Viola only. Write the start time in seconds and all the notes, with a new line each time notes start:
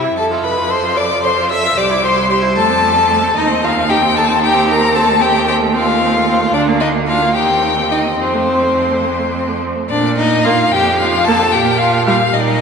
0.04 E4
0.18 A4
0.31 F4
0.44 A4
0.56 F4
0.69 A4
0.83 F4
0.96 A4
1.10 F4
1.23 A4
1.37 F4
1.51 A4
1.64 F4
1.77 G4
1.91 E4
2.03 G4
2.16 E4
2.29 G4
2.42 E4
2.56 A3
2.70 C4
2.83 A3
2.96 C4
3.09 A3
3.23 C4
3.35 D#4
3.48 C4
3.61 D#4
3.75 C4
3.88 D#4
4.02 C4
4.15 D#4
4.28 C4
4.41 D#4
4.54 C4
4.67 D#4
4.80 C4
4.94 C4
5.07 A3
5.20 C4
5.33 A3
5.47 C4
5.60 A3
5.73 C4
5.86 A3
6.01 C4
6.14 A3
6.28 C4
6.41 A3
6.54 D4
6.68 A#3
6.81 D4
6.94 A#3
7.08 D4
7.22 A#3
7.36 D#4
7.49 C4
7.63 D#4
7.78 C4
7.92 D#4
8.05 C4
8.19 C4
8.34 A3
8.48 C4
8.62 A3
8.76 C4
8.91 A3
9.05 C4
9.19 A3
9.33 C4
9.47 A3
9.61 C4
9.75 A3
10.45 A#3
11.27 A#3
12.06 G3